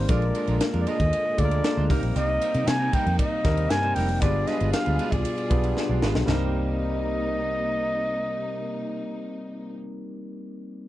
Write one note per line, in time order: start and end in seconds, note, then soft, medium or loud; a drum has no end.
0.00 0.12 G3 medium
0.00 0.09 A#3 medium
0.00 0.11 C4 medium
0.00 0.11 D#4 medium
0.00 0.10 A#4 medium
0.00 0.12 C5 medium
0.08 0.31 A#1 loud
0.08 1.88 A#2 medium
0.08 1.88 D3 medium
0.08 0.86 G#3 medium
0.08 1.88 G#3 medium
0.08 0.23 G#3 medium
0.08 0.86 A#3 medium
0.08 0.87 D4 medium
0.08 0.23 D4 medium
0.08 0.87 F4 medium
0.08 0.23 F4 medium
0.08 0.87 A#4 medium
0.08 0.23 A#4 medium
0.08 0.61 D5 medium
0.08 kick loud
0.08 hi-hat pedal medium
0.08 ride medium
0.22 ride soft
0.35 0.46 G#3 medium
0.35 0.46 D4 medium
0.35 0.46 F4 medium
0.35 0.46 A#4 medium
0.35 ride medium
0.47 0.59 A#1 loud
0.47 0.59 G#3 medium
0.47 0.59 D4 medium
0.47 0.59 F4 medium
0.47 0.59 A#4 medium
0.47 ride soft
0.60 snare loud
0.60 ride medium
0.74 0.85 F2 medium
0.74 0.85 G#3 soft
0.74 0.85 D4 medium
0.74 0.84 F4 medium
0.74 0.84 A#4 medium
0.74 ride soft
0.81 0.90 D5 medium
0.87 1.00 G#3 loud
0.87 0.99 D4 medium
0.87 0.99 F4 medium
0.87 0.99 A#4 medium
0.87 1.41 D#5 loud
0.87 ride medium
1.00 1.10 D#2 loud
1.00 muted clean electric guitar stroke soft
1.00 kick medium
1.00 ride soft
1.12 muted clean electric guitar stroke soft
1.12 ride medium
1.25 muted clean electric guitar stroke soft
1.37 1.60 D2 medium
1.37 1.89 G#3 medium
1.37 1.89 A#3 medium
1.37 1.90 D4 medium
1.37 1.90 F4 medium
1.37 1.45 A4 medium
1.37 1.91 D5 loud
1.37 kick loud
1.37 ride medium
1.45 1.90 A#4 medium
1.51 muted clean electric guitar stroke medium
1.51 ride soft
1.64 snare loud
1.64 ride medium
1.77 1.88 D2 medium
1.77 1.88 G#3 medium
1.77 1.88 D4 medium
1.77 1.88 F4 medium
1.77 1.88 C5 medium
1.89 2.01 C2 medium
1.89 4.20 C3 medium
1.89 2.72 G3 medium
1.89 2.03 G3 medium
1.89 2.72 A#3 medium
1.89 4.20 A#3 medium
1.89 2.73 C4 medium
1.89 2.03 C4 loud
1.89 4.20 D#4 medium
1.89 2.73 D#4 medium
1.89 2.02 D#4 loud
1.89 2.73 A#4 loud
1.89 2.02 A#4 loud
1.89 kick loud
1.89 open hi-hat medium
1.89 ride medium
2.03 2.14 A#1 medium
2.03 muted clean electric guitar stroke soft
2.03 ride soft
2.16 2.37 C2 loud
2.16 2.29 G3 medium
2.16 2.30 C4 medium
2.16 2.30 D#4 medium
2.16 2.30 A#4 medium
2.16 2.69 D#5 loud
2.16 hi-hat pedal medium
2.16 ride medium
2.41 2.52 G3 medium
2.41 2.52 C4 medium
2.41 2.53 D#4 medium
2.41 2.53 A#4 medium
2.41 ride medium
2.54 2.65 C3 loud
2.54 2.66 G3 medium
2.54 2.65 C4 medium
2.54 2.65 D#4 medium
2.54 2.65 A#4 medium
2.54 ride soft
2.67 2.89 C3 loud
2.67 2.96 G#5 loud
2.67 muted clean electric guitar stroke soft
2.67 snare loud
2.67 ride medium
2.80 2.91 G3 medium
2.80 2.91 C4 medium
2.80 2.91 D#4 medium
2.80 2.91 A#4 medium
2.93 3.06 G3 medium
2.93 3.05 C4 loud
2.93 3.05 D#4 medium
2.93 3.05 A#4 loud
2.93 3.19 G5 loud
2.93 kick loud
2.93 ride medium
3.06 3.17 F2 loud
3.06 muted clean electric guitar stroke soft
3.06 ride soft
3.19 3.72 D#5 loud
3.19 muted clean electric guitar stroke soft
3.19 kick loud
3.19 ride medium
3.32 muted clean electric guitar stroke medium
3.44 3.66 D#2 medium
3.44 4.02 G3 medium
3.44 4.03 A#3 medium
3.44 4.03 C4 medium
3.44 4.03 D#4 medium
3.44 4.03 A#4 medium
3.44 kick loud
3.44 snare soft
3.44 ride medium
3.57 muted clean electric guitar stroke medium
3.57 ride medium
3.70 3.92 G2 loud
3.70 3.97 G#5 loud
3.70 snare loud
3.70 ride medium
3.83 3.94 G3 medium
3.83 3.94 C4 medium
3.83 3.94 D#4 medium
3.83 3.94 C5 medium
3.83 ride soft
3.95 4.22 F1 loud
3.95 4.10 G3 loud
3.95 4.09 C4 medium
3.95 4.08 D#4 loud
3.95 4.08 A#4 loud
3.95 4.23 G5 loud
3.95 open hi-hat medium
3.95 ride medium
4.09 muted clean electric guitar stroke soft
4.09 ride soft
4.21 4.43 G1 loud
4.21 6.26 B2 medium
4.21 4.99 G3 medium
4.21 4.35 G#3 medium
4.21 4.99 B3 medium
4.21 4.99 D4 medium
4.21 4.36 D4 medium
4.21 6.26 F4 medium
4.21 4.99 F4 medium
4.21 4.36 F4 medium
4.21 6.26 G#4 medium
4.21 5.00 G#4 medium
4.21 4.36 B4 medium
4.21 4.49 D5 loud
4.21 kick loud
4.21 hi-hat pedal medium
4.21 ride medium
4.47 4.58 G#3 medium
4.47 4.58 D4 medium
4.47 4.59 F4 medium
4.47 4.59 B4 medium
4.47 4.73 D#5 loud
4.47 snare soft
4.47 ride medium
4.60 4.72 G1 medium
4.60 4.72 G#3 medium
4.60 4.72 D4 medium
4.60 4.71 F4 medium
4.60 4.71 B4 medium
4.60 ride soft
4.73 5.13 F5 loud
4.73 muted clean electric guitar stroke soft
4.73 snare loud
4.73 ride medium
4.86 4.97 D2 medium
4.86 4.97 G#3 medium
4.86 4.97 D4 medium
4.86 4.97 F4 medium
4.86 4.97 B4 medium
4.86 ride soft
4.99 5.13 G#3 loud
4.99 5.12 D4 medium
4.99 5.11 F4 loud
4.99 5.11 B4 loud
4.99 ride medium
5.12 5.23 C2 medium
5.12 6.02 D5 medium
5.12 muted clean electric guitar stroke soft
5.12 kick medium
5.12 ride soft
5.25 muted clean electric guitar stroke soft
5.25 ride medium
5.38 muted clean electric guitar stroke soft
5.38 ride soft
5.50 5.72 B1 medium
5.50 6.08 G3 medium
5.50 6.09 B3 medium
5.50 6.08 D4 medium
5.50 6.09 F4 medium
5.50 6.09 G#4 medium
5.50 kick loud
5.50 ride medium
5.64 muted clean electric guitar stroke medium
5.64 ride medium
5.76 muted clean electric guitar stroke soft
5.76 snare medium
5.89 6.00 B1 medium
5.89 6.01 G#3 medium
5.89 6.00 D4 medium
5.89 6.00 F4 medium
5.89 6.00 D5 medium
6.02 6.13 G#1 medium
6.02 6.16 G#3 medium
6.02 6.15 D4 medium
6.02 6.15 F4 loud
6.02 6.14 B4 loud
6.02 snare loud
6.15 6.26 B1 medium
6.15 muted clean electric guitar stroke soft
6.15 snare loud
6.26 9.74 C2 loud
6.26 9.75 C3 medium
6.26 9.72 G3 medium
6.26 9.77 A#3 medium
6.26 9.73 A#3 medium
6.26 9.74 A#3 medium
6.26 9.75 C4 medium
6.26 9.79 D#4 medium
6.26 9.75 D#4 medium
6.26 9.76 D#4 medium
6.26 9.75 D#5 loud
6.26 snare loud
6.26 floor tom loud
6.26 china medium
6.30 9.80 G4 medium
6.30 9.77 A#4 loud
6.30 9.82 C5 medium